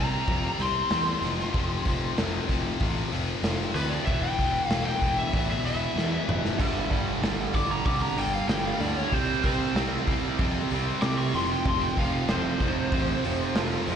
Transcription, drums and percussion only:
0.27 kick loud
0.27 open hi-hat medium
0.59 open hi-hat medium
0.90 snare loud
0.90 open hi-hat medium
1.22 open hi-hat medium
1.39 snare soft
1.54 kick loud
1.54 open hi-hat medium
1.85 kick medium
1.85 open hi-hat medium
2.18 snare loud
2.18 open hi-hat medium
2.49 kick medium
2.49 snare soft
2.49 open hi-hat medium
2.80 kick loud
2.80 open hi-hat medium
3.12 open hi-hat medium
3.44 snare loud
3.44 open hi-hat medium
3.75 open hi-hat medium
4.07 kick loud
4.07 open hi-hat medium
4.39 kick medium
4.39 open hi-hat medium
4.70 snare loud
4.70 open hi-hat medium
5.02 kick medium
5.02 open hi-hat medium
5.34 kick loud
5.34 open hi-hat medium
5.66 open hi-hat medium
5.98 snare medium
6.29 mid tom medium
6.45 snare medium
6.60 kick loud
6.60 open hi-hat medium
6.60 crash medium
6.91 kick medium
6.91 open hi-hat medium
7.23 snare loud
7.23 open hi-hat medium
7.54 kick medium
7.54 open hi-hat medium
7.86 kick loud
7.86 open hi-hat medium
8.18 open hi-hat medium
8.49 snare loud
8.49 open hi-hat medium
8.80 open hi-hat medium
8.97 snare soft
9.12 kick loud
9.12 open hi-hat medium
9.44 kick medium
9.44 open hi-hat medium
9.76 snare loud
9.76 open hi-hat medium
10.07 kick medium
10.07 open hi-hat medium
10.39 kick loud
10.39 open hi-hat medium
10.70 open hi-hat medium
11.02 snare loud
11.02 open hi-hat medium
11.34 open hi-hat medium
11.65 kick loud
11.65 open hi-hat medium
11.97 kick medium
11.97 open hi-hat medium
12.28 snare loud
12.28 open hi-hat medium
12.60 kick medium
12.60 snare soft
12.60 open hi-hat medium
12.92 kick loud
12.92 open hi-hat medium
13.24 open hi-hat medium
13.55 snare loud
13.55 open hi-hat medium
13.87 open hi-hat medium

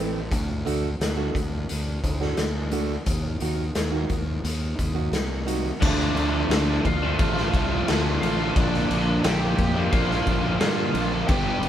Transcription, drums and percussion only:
0.31 kick loud
0.31 closed hi-hat medium
0.67 closed hi-hat medium
1.01 snare loud
1.01 closed hi-hat medium
1.35 kick medium
1.35 closed hi-hat medium
1.69 closed hi-hat medium
2.04 kick medium
2.04 closed hi-hat medium
2.22 snare soft
2.37 snare loud
2.37 closed hi-hat medium
2.71 closed hi-hat medium
3.06 kick loud
3.06 closed hi-hat medium
3.40 closed hi-hat medium
3.75 snare loud
3.75 closed hi-hat medium
4.09 kick medium
4.09 closed hi-hat medium
4.45 closed hi-hat medium
4.79 kick medium
4.79 closed hi-hat medium
5.13 snare medium
5.13 closed hi-hat medium
5.48 closed hi-hat medium
5.82 kick loud
5.82 crash loud
5.82 crash medium
6.00 snare soft
6.17 crash medium
6.51 snare loud
6.51 crash medium
6.85 kick medium
6.85 crash medium
7.19 kick loud
7.19 crash medium
7.37 snare soft
7.54 kick medium
7.54 crash medium
7.88 snare loud
7.88 crash medium
8.23 crash medium
8.56 kick loud
8.56 crash medium
8.74 snare soft
8.91 crash medium
9.24 snare loud
9.24 crash medium
9.58 kick medium
9.58 crash medium
9.92 kick loud
9.92 crash medium
10.11 snare soft
10.27 kick medium
10.27 crash medium
10.61 snare medium
10.61 crash medium
10.95 crash medium
11.29 kick loud
11.29 crash medium
11.63 crash medium

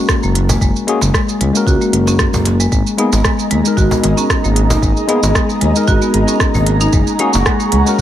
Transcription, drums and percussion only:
0.09 kick loud
0.09 cross-stick loud
0.09 shaker medium
0.23 shaker soft
0.35 closed hi-hat medium
0.49 cajon bass medium
0.49 shaker medium
0.61 kick loud
0.61 shaker medium
0.76 shaker soft
0.88 closed hi-hat medium
1.01 cajon slap medium
1.01 shaker medium
1.14 kick medium
1.14 cross-stick medium
1.14 shaker soft
1.29 shaker soft
1.41 closed hi-hat medium
1.55 shaker medium
1.67 kick loud
1.67 shaker medium
1.81 shaker soft
1.93 closed hi-hat medium
2.07 cajon slap medium
2.07 shaker medium
2.19 kick loud
2.19 cross-stick medium
2.19 shaker medium
2.34 cajon bass medium
2.34 shaker soft
2.45 cajon slap medium
2.45 closed hi-hat medium
2.60 cajon slap soft
2.60 shaker medium
2.72 kick loud
2.72 shaker medium
2.87 shaker soft
2.98 closed hi-hat medium
3.13 cajon slap medium
3.13 shaker medium
3.25 kick loud
3.25 cross-stick medium
3.25 shaker medium
3.39 shaker soft
3.51 closed hi-hat medium
3.65 shaker medium
3.77 kick medium
3.77 shaker medium
3.91 cajon bass medium
3.91 shaker soft
4.04 cajon slap medium
4.04 closed hi-hat medium
4.18 shaker medium
4.30 kick loud
4.30 cross-stick medium
4.30 shaker medium
4.44 shaker soft
4.56 closed hi-hat medium
4.70 cajon bass medium
4.70 shaker medium
4.82 kick medium
4.82 shaker soft
4.97 shaker soft
5.09 closed hi-hat medium
5.23 cajon slap medium
5.23 shaker medium
5.35 kick loud
5.35 cross-stick medium
5.35 shaker soft
5.50 shaker soft
5.61 closed hi-hat medium
5.76 shaker medium
5.88 kick medium
5.88 shaker medium
6.02 shaker soft
6.14 closed hi-hat medium
6.28 shaker medium
6.40 kick medium
6.40 cross-stick medium
6.40 shaker medium
6.54 cajon bass medium
6.54 shaker soft
6.67 closed hi-hat medium
6.81 shaker medium
6.93 kick loud
6.93 shaker medium
7.07 shaker soft
7.19 closed hi-hat medium
7.33 cajon slap medium
7.33 shaker medium
7.46 kick medium
7.46 cross-stick medium
7.46 shaker soft
7.60 shaker soft
7.72 closed hi-hat medium
7.87 shaker medium

